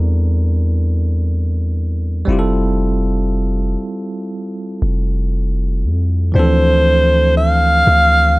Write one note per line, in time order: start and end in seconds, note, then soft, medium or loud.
0.00 2.24 E2 medium
0.00 2.22 G3 medium
0.00 2.23 C4 medium
0.00 2.24 D4 medium
0.00 2.25 E4 medium
0.00 2.26 A#4 medium
2.25 3.76 F1 loud
2.25 6.29 G3 medium
2.25 6.30 C4 medium
2.25 6.31 E4 medium
2.31 6.32 F4 medium
2.31 2.37 G4 medium
2.39 6.36 A4 medium
4.82 5.85 F1 loud
5.84 6.32 F2 loud
6.32 7.83 D2 loud
6.32 6.36 E3 medium
6.32 8.39 C4 medium
6.32 8.39 D4 medium
6.32 7.33 C5 loud
6.37 8.39 E3 medium
6.37 8.39 F3 medium
6.37 8.39 A4 medium
7.37 8.39 F5 loud
7.87 8.39 D2 loud